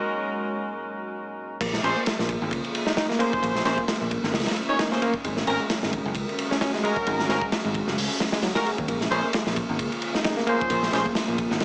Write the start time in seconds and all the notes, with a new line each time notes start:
Already playing: G#3 C#4 D#4 F#4 A#4 C#5
1.61 A#1 A#3 C#4 F4 G#4, kick, crash, ride
1.73 snare
1.83 A#1 C#4 G#4 C5, ride
1.96 A#3
2.06 snare, ride
2.19 A#1 A#3, snare
2.29 kick, ride
2.42 G#1
2.51 C#2, kick, ride
2.64 ride
2.75 ride
2.87 D#4, snare
2.97 D#4, snare, ride
3.09 A#3, snare
3.19 A#3 C#4 G#4 C5, ride
3.33 kick
3.42 A#1 A#3 A#4, kick, ride
3.55 snare
3.65 A#1 C#4 G#4 C5, snare, ride
3.78 A#3, kick
3.88 snare, ride
4.01 A#1 A#3
4.11 kick, ride
4.24 G#1, snare
4.34 C#2, snare, ride
4.40 snare, ride
4.46 snare, ride
4.51 snare, ride
4.56 ride
4.69 C#4 D#4 G#4 C#5
4.79 D#4, snare, ride
4.92 A#3 C#4 G#4 C5, snare
5.02 A#3, ride
5.14 kick
5.24 G#1 G#3 F#4 A#4, kick, ride
5.37 snare
5.47 G#1 C4 C#4 F#4 A#4, ride
5.60 G#3
5.70 snare, ride
5.83 G#1 G#3, snare
5.93 kick, ride
6.05 F#1
6.15 C#2, kick, ride
6.29 ride
6.39 ride
6.51 C#4, snare
6.61 C#4, snare, ride
6.74 G#3, snare
6.84 G#3 C#4 F#4 A#4, ride
6.96 kick
7.06 G#1 G#3 G#4, kick, ride
7.20 snare
7.29 G#1 C4 C#4 F#4 A#4, snare, ride
7.42 G#3, kick
7.52 snare, ride
7.65 G#1 G#3
7.74 kick, ride
7.87 F#1, snare
7.98 C#2, open hi-hat
8.20 F#3, snare, ride
8.32 G#3, snare, ride
8.43 F#3, snare, ride
8.55 G#3 C#4 F#4 A#4, snare, ride
8.65 G#4, ride
8.78 D#2, kick
8.88 A#1 A#3 F4, kick, ride
9.01 snare
9.11 A#1 C#4 G#4 C5, ride
9.24 A#3
9.33 snare, ride
9.46 A#1 A#3, snare
9.56 kick, ride
9.69 G#1
9.79 C#2, kick, ride
9.92 ride
10.02 ride
10.15 D#4, snare
10.24 D#4, snare, ride
10.37 A#3, snare
10.47 A#3 C#4 G#4 C5, ride
10.61 kick
10.70 A#1 A#3, kick, ride
10.83 snare
10.92 A#1 C#4 G#4 C5, snare, ride
11.05 A#3, kick
11.15 snare, ride
11.28 A#1 A#3
11.38 kick, ride
11.51 G#1, snare
11.60 C#2, snare, ride